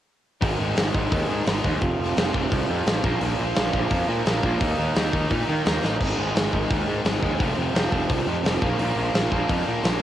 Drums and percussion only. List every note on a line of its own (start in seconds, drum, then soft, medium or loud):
0.42 kick loud
0.42 open hi-hat medium
0.76 snare loud
0.76 open hi-hat medium
0.94 kick medium
1.12 kick loud
1.12 open hi-hat medium
1.46 snare loud
1.46 open hi-hat medium
1.64 kick medium
1.81 kick loud
1.81 open hi-hat medium
2.17 snare loud
2.17 open hi-hat medium
2.34 kick medium
2.52 kick loud
2.52 open hi-hat medium
2.87 snare loud
2.87 open hi-hat medium
3.04 kick loud
3.21 open hi-hat medium
3.56 snare loud
3.56 open hi-hat medium
3.74 kick medium
3.91 kick loud
3.91 open hi-hat medium
4.26 snare loud
4.26 open hi-hat medium
4.43 kick loud
4.60 kick loud
4.60 open hi-hat medium
4.95 snare loud
4.95 open hi-hat medium
5.13 kick medium
5.30 kick loud
5.30 open hi-hat medium
5.66 snare loud
5.66 open hi-hat medium
5.84 snare medium
6.00 kick loud
6.00 splash medium
6.00 crash medium
6.36 snare loud
6.36 open hi-hat medium
6.53 kick medium
6.70 kick loud
6.70 open hi-hat medium
7.05 snare loud
7.05 open hi-hat medium
7.22 kick medium
7.40 kick loud
7.40 open hi-hat medium
7.75 snare loud
7.75 open hi-hat medium
7.92 kick medium
8.10 kick loud
8.10 open hi-hat medium
8.45 snare loud
8.45 open hi-hat medium
8.62 kick loud
8.79 open hi-hat medium
9.14 snare loud
9.14 open hi-hat medium
9.32 kick medium
9.49 kick loud
9.49 open hi-hat medium
9.84 snare loud
9.84 open hi-hat medium